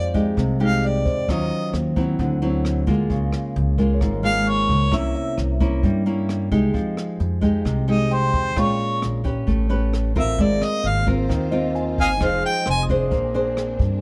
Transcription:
Already playing: upright bass F2, nylon-string guitar F3 G#3 D#4 G4, tine electric piano C5 F5, harmonica D5
0.14 nylon-string guitar G#3 D#4 G4, kick, closed hi-hat
0.37 upright bass C2, nylon-string guitar C3, kick, cross-stick, closed hi-hat
0.60 nylon-string guitar G#3 D#4 G4, harmonica F5, closed hi-hat
0.83 harmonica D5, closed hi-hat
1.05 upright bass F2, tine electric piano C5, kick, closed hi-hat
1.28 upright bass D#2, nylon-string guitar D#3 F#3 C#4 F4, harmonica D#5, kick, cross-stick, closed hi-hat
1.51 closed hi-hat
1.73 upright bass D#2, cross-stick, closed hi-hat
1.96 nylon-string guitar F#3 C4 E4, kick, closed hi-hat
2.19 upright bass D2, nylon-string guitar D3, kick, closed hi-hat
2.42 nylon-string guitar F#3 C4 E4, closed hi-hat
2.65 cross-stick, closed hi-hat
2.87 upright bass D2, nylon-string guitar G#3 A#3 F4, kick, closed hi-hat
3.10 upright bass C#2, nylon-string guitar C#3, kick, closed hi-hat
3.33 cross-stick, closed hi-hat
3.56 upright bass C#2, closed hi-hat
3.78 nylon-string guitar G#3 A#3 F4, tine electric piano A#4, kick, closed hi-hat
3.94 tine electric piano C#5
4.01 upright bass G#1, nylon-string guitar G#2, kick, cross-stick, closed hi-hat
4.23 nylon-string guitar G#3 A#3 F4, harmonica F5, closed hi-hat
4.47 harmonica C#5, closed hi-hat
4.69 upright bass C#2, kick, closed hi-hat
4.91 upright bass C2, nylon-string guitar C3 A#3 C#4 E4, harmonica E5, kick, cross-stick, closed hi-hat
5.15 tine electric piano E5, closed hi-hat
5.38 upright bass C2, cross-stick, closed hi-hat
5.60 nylon-string guitar A#3 C#4 E4, kick, closed hi-hat
5.83 upright bass G2, nylon-string guitar G3, kick, closed hi-hat
6.06 nylon-string guitar A#3 C#4 E4, closed hi-hat
6.29 cross-stick, closed hi-hat
6.52 upright bass C2, nylon-string guitar G#3 D#4 G4, kick, closed hi-hat
6.74 upright bass F2, nylon-string guitar F3, kick, closed hi-hat
6.97 cross-stick, closed hi-hat
7.20 upright bass F2, closed hi-hat
7.41 nylon-string guitar G#3 D#4 G4, kick, closed hi-hat
7.65 upright bass C2, nylon-string guitar C3, kick, cross-stick, closed hi-hat
7.88 nylon-string guitar G#3 D#4 G4, harmonica D#5, closed hi-hat
8.11 harmonica C5, tine electric piano G5, closed hi-hat
8.33 upright bass F2, kick, closed hi-hat
8.56 upright bass A#1, nylon-string guitar A#2 G#3 C#4 F4, harmonica C#5, kick, cross-stick, closed hi-hat
8.79 closed hi-hat
9.02 upright bass A#1, cross-stick, closed hi-hat
9.24 nylon-string guitar C#4 G4 B4, kick, closed hi-hat
9.47 upright bass A1, nylon-string guitar A3, kick, closed hi-hat
9.69 nylon-string guitar C#4 G4 B4, closed hi-hat
9.93 cross-stick, closed hi-hat
10.16 upright bass A1, nylon-string guitar C4 F4 A#4, harmonica E5, kick, closed hi-hat
10.39 upright bass G#1, nylon-string guitar G#3, string section A#3 F4 C5, harmonica D5, kick, closed hi-hat
10.62 harmonica D#5, cross-stick
10.84 upright bass G#1, closed hi-hat
10.88 harmonica F5
11.07 nylon-string guitar C4 F4 A#4, kick, closed hi-hat
11.29 upright bass D#2, nylon-string guitar D#3, kick, cross-stick, closed hi-hat
11.51 nylon-string guitar C4 F4 A#4, tine electric piano D#5, closed hi-hat
11.75 tine electric piano G#5, closed hi-hat
11.98 upright bass G#1, harmonica D#5 F5 G#5, kick, closed hi-hat
12.20 upright bass F1, nylon-string guitar F3 D#4 G#4 C5, string section G#3 D#5, harmonica F5, kick, cross-stick, closed hi-hat
12.43 harmonica G5, closed hi-hat
12.66 upright bass F1, tine electric piano C6, cross-stick, closed hi-hat
12.70 harmonica G#5
12.83 tine electric piano D#6
12.89 nylon-string guitar D4 G#4 C5, kick, closed hi-hat
13.11 upright bass A#1, nylon-string guitar A#3, string section C4 D4 G#4, kick, closed hi-hat
13.34 nylon-string guitar D4 G#4 C5, closed hi-hat
13.57 cross-stick, closed hi-hat
13.79 upright bass G2, kick, closed hi-hat

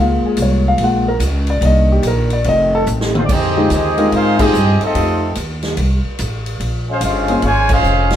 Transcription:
Already playing: upright bass C#2, grand piano G#3 A#3
0.00 grand piano F4 F5
0.24 grand piano G#4, muted upright bass stroke
0.37 upright bass C2, hi-hat pedal, ride
0.42 grand piano C#5
0.68 grand piano F5
0.78 upright bass A#1, grand piano G#3 A#3, ride
0.82 grand piano F4 F#5
1.08 grand piano A#4
1.20 upright bass C#2, hi-hat pedal, ride
1.47 grand piano D5, ride
1.61 upright bass C2, grand piano D#3 A#3 D4, ride
1.65 grand piano D#5
1.92 grand piano G4
2.03 upright bass A#1, hi-hat pedal, ride
2.07 grand piano A#4
2.30 grand piano D5, ride
2.44 upright bass F1, grand piano D#3 A3 C4, ride
2.49 grand piano D#5
2.75 grand piano A4
2.86 upright bass A1, hi-hat pedal
3.01 snare
3.15 trombone section D#3 A3 C4, trumpet section A3 D#4 F4 C5, mid tom
3.25 trumpet section D5
3.29 upright bass F2, trombone section G#3 C4 D#4, trumpet section C4 G4 G#4 D#5, kick, crash
3.56 grand piano G#3 C4 D#4 F4 G4
3.70 upright bass D#2, trombone section G#3 C4 D#4, trumpet section C4 G4 G#4 D#5, hi-hat pedal, ride
3.97 grand piano G#3 C4 D#4 F4 A#4, ride
4.12 upright bass G#2, trombone section G#3 C4 F4, trumpet section D#4 G#4 C5 F5, ride
4.38 trombone section G#3 C4 D#4, grand piano G#3 C4 D#4 F4 G#4, trumpet section C4 G4 G#4 D#5, kick, crash
4.53 upright bass G2, hi-hat pedal
4.81 trombone section A3 C4 D#4, trumpet section C4 F4 A4 D#5, muted upright bass stroke, ride
4.95 upright bass F2, grand piano A3 C4 D#4 F4 G4, ride
5.35 upright bass D#2, hi-hat pedal, ride
5.63 snare, ride
5.77 upright bass C2, ride
6.05 muted upright bass stroke
6.19 upright bass A1, hi-hat pedal, ride
6.46 ride
6.60 upright bass A#1, ride
6.89 trombone section G#3 C#4 F4, trumpet section C#4 G#4 C5 F5
7.01 upright bass G1, trombone section G#3 C#4 F4, trumpet section C#4 G#4 C5 F5, hi-hat pedal, ride
7.28 grand piano A#3 C4 C#4 F4 G#4, ride
7.42 upright bass G#1, trombone section C#3 F3 G#3, trumpet section F4 C5 C#5 G#5, ride
7.69 trombone section G#3 C#4 F4, trumpet section C#4 G#4 C5 F5, kick, crash
7.83 upright bass F1, hi-hat pedal
8.10 snare, ride

